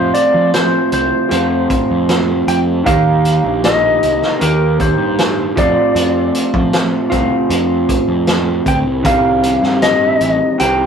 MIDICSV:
0, 0, Header, 1, 5, 480
1, 0, Start_track
1, 0, Tempo, 774194
1, 1776, Time_signature, 4, 2, 24, 8
1, 6735, End_track
2, 0, Start_track
2, 0, Title_t, "Electric slide guitar"
2, 0, Program_c, 0, 29
2, 0, Note_on_c, 0, 72, 94
2, 74, Note_off_c, 0, 72, 0
2, 86, Note_on_c, 0, 74, 85
2, 313, Note_off_c, 0, 74, 0
2, 335, Note_on_c, 0, 72, 79
2, 573, Note_off_c, 0, 72, 0
2, 580, Note_on_c, 0, 72, 76
2, 1033, Note_off_c, 0, 72, 0
2, 1539, Note_on_c, 0, 79, 98
2, 1604, Note_off_c, 0, 79, 0
2, 1774, Note_on_c, 0, 77, 101
2, 2263, Note_on_c, 0, 75, 83
2, 2269, Note_off_c, 0, 77, 0
2, 2714, Note_off_c, 0, 75, 0
2, 2744, Note_on_c, 0, 70, 78
2, 2980, Note_off_c, 0, 70, 0
2, 2983, Note_on_c, 0, 72, 78
2, 3433, Note_off_c, 0, 72, 0
2, 3463, Note_on_c, 0, 74, 75
2, 4393, Note_off_c, 0, 74, 0
2, 5382, Note_on_c, 0, 79, 93
2, 5445, Note_off_c, 0, 79, 0
2, 5618, Note_on_c, 0, 77, 104
2, 6091, Note_on_c, 0, 75, 85
2, 6108, Note_off_c, 0, 77, 0
2, 6546, Note_off_c, 0, 75, 0
2, 6571, Note_on_c, 0, 79, 93
2, 6735, Note_off_c, 0, 79, 0
2, 6735, End_track
3, 0, Start_track
3, 0, Title_t, "Clean electric guitar"
3, 0, Program_c, 1, 27
3, 0, Note_on_c, 1, 53, 80
3, 0, Note_on_c, 1, 57, 79
3, 0, Note_on_c, 1, 60, 83
3, 0, Note_on_c, 1, 65, 98
3, 792, Note_off_c, 1, 53, 0
3, 799, Note_off_c, 1, 57, 0
3, 800, Note_on_c, 1, 53, 69
3, 803, Note_off_c, 1, 60, 0
3, 807, Note_off_c, 1, 65, 0
3, 807, Note_on_c, 1, 57, 64
3, 815, Note_on_c, 1, 60, 69
3, 822, Note_on_c, 1, 65, 74
3, 1753, Note_off_c, 1, 53, 0
3, 1757, Note_off_c, 1, 57, 0
3, 1761, Note_off_c, 1, 60, 0
3, 1761, Note_on_c, 1, 51, 72
3, 1764, Note_off_c, 1, 65, 0
3, 1771, Note_on_c, 1, 58, 82
3, 1776, Note_on_c, 1, 63, 90
3, 1784, Note_on_c, 1, 67, 88
3, 2713, Note_off_c, 1, 51, 0
3, 2718, Note_off_c, 1, 58, 0
3, 2721, Note_off_c, 1, 63, 0
3, 2722, Note_on_c, 1, 51, 69
3, 2725, Note_off_c, 1, 67, 0
3, 2733, Note_on_c, 1, 58, 74
3, 2739, Note_on_c, 1, 63, 73
3, 2743, Note_on_c, 1, 67, 72
3, 3433, Note_off_c, 1, 51, 0
3, 3439, Note_off_c, 1, 58, 0
3, 3442, Note_off_c, 1, 63, 0
3, 3444, Note_off_c, 1, 67, 0
3, 3445, Note_on_c, 1, 53, 82
3, 3456, Note_on_c, 1, 57, 87
3, 3462, Note_on_c, 1, 60, 82
3, 3468, Note_on_c, 1, 65, 83
3, 4394, Note_off_c, 1, 53, 0
3, 4394, Note_off_c, 1, 65, 0
3, 4399, Note_off_c, 1, 57, 0
3, 4401, Note_on_c, 1, 65, 82
3, 4408, Note_off_c, 1, 60, 0
3, 4411, Note_on_c, 1, 60, 83
3, 4416, Note_on_c, 1, 57, 68
3, 4423, Note_on_c, 1, 53, 65
3, 5351, Note_off_c, 1, 65, 0
3, 5359, Note_off_c, 1, 57, 0
3, 5363, Note_off_c, 1, 53, 0
3, 5600, Note_on_c, 1, 48, 77
3, 5610, Note_on_c, 1, 51, 87
3, 5611, Note_on_c, 1, 55, 82
3, 5614, Note_off_c, 1, 60, 0
3, 5617, Note_on_c, 1, 60, 75
3, 5623, Note_on_c, 1, 67, 89
3, 6551, Note_off_c, 1, 48, 0
3, 6556, Note_off_c, 1, 51, 0
3, 6556, Note_off_c, 1, 55, 0
3, 6561, Note_on_c, 1, 48, 70
3, 6562, Note_off_c, 1, 67, 0
3, 6569, Note_on_c, 1, 51, 68
3, 6573, Note_on_c, 1, 55, 65
3, 6576, Note_off_c, 1, 60, 0
3, 6579, Note_on_c, 1, 60, 71
3, 6584, Note_on_c, 1, 67, 72
3, 6735, Note_off_c, 1, 48, 0
3, 6735, Note_off_c, 1, 51, 0
3, 6735, Note_off_c, 1, 55, 0
3, 6735, Note_off_c, 1, 60, 0
3, 6735, Note_off_c, 1, 67, 0
3, 6735, End_track
4, 0, Start_track
4, 0, Title_t, "Picked electric bass"
4, 0, Program_c, 2, 34
4, 0, Note_on_c, 2, 41, 90
4, 66, Note_off_c, 2, 41, 0
4, 211, Note_on_c, 2, 53, 83
4, 425, Note_off_c, 2, 53, 0
4, 573, Note_on_c, 2, 36, 79
4, 680, Note_off_c, 2, 36, 0
4, 815, Note_on_c, 2, 41, 91
4, 1028, Note_off_c, 2, 41, 0
4, 1182, Note_on_c, 2, 41, 77
4, 1498, Note_off_c, 2, 41, 0
4, 1532, Note_on_c, 2, 41, 90
4, 1746, Note_off_c, 2, 41, 0
4, 1777, Note_on_c, 2, 39, 86
4, 2095, Note_off_c, 2, 39, 0
4, 2133, Note_on_c, 2, 34, 80
4, 2452, Note_off_c, 2, 34, 0
4, 2498, Note_on_c, 2, 36, 90
4, 2603, Note_off_c, 2, 36, 0
4, 2737, Note_on_c, 2, 39, 91
4, 3054, Note_off_c, 2, 39, 0
4, 3091, Note_on_c, 2, 43, 71
4, 3411, Note_off_c, 2, 43, 0
4, 3455, Note_on_c, 2, 41, 77
4, 3561, Note_off_c, 2, 41, 0
4, 3688, Note_on_c, 2, 41, 87
4, 3903, Note_off_c, 2, 41, 0
4, 4055, Note_on_c, 2, 53, 75
4, 4267, Note_off_c, 2, 53, 0
4, 4414, Note_on_c, 2, 36, 78
4, 4519, Note_off_c, 2, 36, 0
4, 4648, Note_on_c, 2, 41, 95
4, 4862, Note_off_c, 2, 41, 0
4, 5008, Note_on_c, 2, 41, 67
4, 5328, Note_off_c, 2, 41, 0
4, 5369, Note_on_c, 2, 38, 80
4, 5478, Note_off_c, 2, 38, 0
4, 5488, Note_on_c, 2, 36, 71
4, 5597, Note_off_c, 2, 36, 0
4, 5612, Note_on_c, 2, 36, 87
4, 5930, Note_off_c, 2, 36, 0
4, 5970, Note_on_c, 2, 43, 87
4, 6289, Note_off_c, 2, 43, 0
4, 6330, Note_on_c, 2, 33, 86
4, 6436, Note_off_c, 2, 33, 0
4, 6576, Note_on_c, 2, 36, 88
4, 6735, Note_off_c, 2, 36, 0
4, 6735, End_track
5, 0, Start_track
5, 0, Title_t, "Drums"
5, 89, Note_on_c, 9, 42, 63
5, 151, Note_off_c, 9, 42, 0
5, 332, Note_on_c, 9, 42, 81
5, 334, Note_on_c, 9, 38, 108
5, 394, Note_off_c, 9, 42, 0
5, 396, Note_off_c, 9, 38, 0
5, 571, Note_on_c, 9, 42, 62
5, 633, Note_off_c, 9, 42, 0
5, 812, Note_on_c, 9, 42, 72
5, 874, Note_off_c, 9, 42, 0
5, 1055, Note_on_c, 9, 36, 75
5, 1055, Note_on_c, 9, 42, 59
5, 1117, Note_off_c, 9, 36, 0
5, 1117, Note_off_c, 9, 42, 0
5, 1295, Note_on_c, 9, 42, 71
5, 1297, Note_on_c, 9, 38, 95
5, 1357, Note_off_c, 9, 42, 0
5, 1359, Note_off_c, 9, 38, 0
5, 1537, Note_on_c, 9, 42, 61
5, 1599, Note_off_c, 9, 42, 0
5, 1775, Note_on_c, 9, 42, 75
5, 1776, Note_on_c, 9, 36, 104
5, 1837, Note_off_c, 9, 42, 0
5, 1838, Note_off_c, 9, 36, 0
5, 2015, Note_on_c, 9, 42, 62
5, 2077, Note_off_c, 9, 42, 0
5, 2255, Note_on_c, 9, 42, 83
5, 2257, Note_on_c, 9, 38, 105
5, 2317, Note_off_c, 9, 42, 0
5, 2319, Note_off_c, 9, 38, 0
5, 2497, Note_on_c, 9, 42, 51
5, 2559, Note_off_c, 9, 42, 0
5, 2616, Note_on_c, 9, 38, 32
5, 2678, Note_off_c, 9, 38, 0
5, 2734, Note_on_c, 9, 42, 76
5, 2796, Note_off_c, 9, 42, 0
5, 2975, Note_on_c, 9, 36, 76
5, 2975, Note_on_c, 9, 42, 54
5, 3037, Note_off_c, 9, 36, 0
5, 3037, Note_off_c, 9, 42, 0
5, 3215, Note_on_c, 9, 42, 71
5, 3217, Note_on_c, 9, 38, 99
5, 3277, Note_off_c, 9, 42, 0
5, 3279, Note_off_c, 9, 38, 0
5, 3455, Note_on_c, 9, 36, 97
5, 3456, Note_on_c, 9, 42, 58
5, 3517, Note_off_c, 9, 36, 0
5, 3518, Note_off_c, 9, 42, 0
5, 3694, Note_on_c, 9, 42, 77
5, 3756, Note_off_c, 9, 42, 0
5, 3934, Note_on_c, 9, 42, 64
5, 3996, Note_off_c, 9, 42, 0
5, 4054, Note_on_c, 9, 36, 79
5, 4116, Note_off_c, 9, 36, 0
5, 4173, Note_on_c, 9, 42, 83
5, 4175, Note_on_c, 9, 38, 105
5, 4235, Note_off_c, 9, 42, 0
5, 4237, Note_off_c, 9, 38, 0
5, 4413, Note_on_c, 9, 36, 63
5, 4414, Note_on_c, 9, 42, 60
5, 4475, Note_off_c, 9, 36, 0
5, 4476, Note_off_c, 9, 42, 0
5, 4651, Note_on_c, 9, 42, 76
5, 4713, Note_off_c, 9, 42, 0
5, 4892, Note_on_c, 9, 36, 72
5, 4893, Note_on_c, 9, 42, 63
5, 4954, Note_off_c, 9, 36, 0
5, 4955, Note_off_c, 9, 42, 0
5, 5128, Note_on_c, 9, 42, 73
5, 5130, Note_on_c, 9, 38, 94
5, 5190, Note_off_c, 9, 42, 0
5, 5192, Note_off_c, 9, 38, 0
5, 5370, Note_on_c, 9, 36, 72
5, 5370, Note_on_c, 9, 42, 59
5, 5432, Note_off_c, 9, 36, 0
5, 5432, Note_off_c, 9, 42, 0
5, 5609, Note_on_c, 9, 42, 77
5, 5610, Note_on_c, 9, 36, 99
5, 5671, Note_off_c, 9, 42, 0
5, 5672, Note_off_c, 9, 36, 0
5, 5849, Note_on_c, 9, 42, 65
5, 5911, Note_off_c, 9, 42, 0
5, 5970, Note_on_c, 9, 38, 30
5, 6032, Note_off_c, 9, 38, 0
5, 6088, Note_on_c, 9, 42, 75
5, 6090, Note_on_c, 9, 38, 103
5, 6150, Note_off_c, 9, 42, 0
5, 6152, Note_off_c, 9, 38, 0
5, 6328, Note_on_c, 9, 42, 55
5, 6390, Note_off_c, 9, 42, 0
5, 6569, Note_on_c, 9, 42, 75
5, 6631, Note_off_c, 9, 42, 0
5, 6735, End_track
0, 0, End_of_file